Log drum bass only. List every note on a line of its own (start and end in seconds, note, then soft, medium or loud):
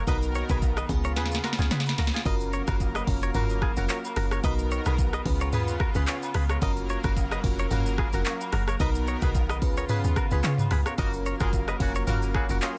0.07 0.43 B1 loud
0.50 0.83 B1 loud
0.89 1.18 C#2 loud
1.16 1.39 D#2 loud
1.59 1.69 C#2 loud
1.71 1.94 C#3 loud
1.98 2.11 C#2 medium
2.26 2.61 F#1 loud
2.68 3.01 F#1 loud
3.07 3.30 F1 loud
3.35 3.70 F#1 loud
3.77 3.87 F1 medium
4.16 4.39 F#1 medium
4.44 4.79 B1 loud
4.86 5.19 B1 loud
5.26 5.54 C#2 loud
5.53 5.88 D#2 medium
5.95 6.05 C#2 loud
6.35 6.58 C#2 medium
6.62 6.97 F#1 loud
7.04 7.37 F#1 loud
7.44 7.67 F1 loud
7.71 8.06 F#1 loud
8.13 8.24 F1 medium
8.53 8.76 F#1 medium
8.80 9.16 B1 loud
9.22 9.63 B1 loud
9.62 9.85 C#2 loud
10.04 10.14 D#2 medium
10.31 10.42 C#2 medium
10.44 10.67 C#3 loud
10.71 10.84 C#2 loud
10.98 11.34 F#1 loud
11.41 11.74 F#1 loud
11.80 12.03 F1 loud
12.07 12.43 F#1 loud
12.50 12.60 F1 medium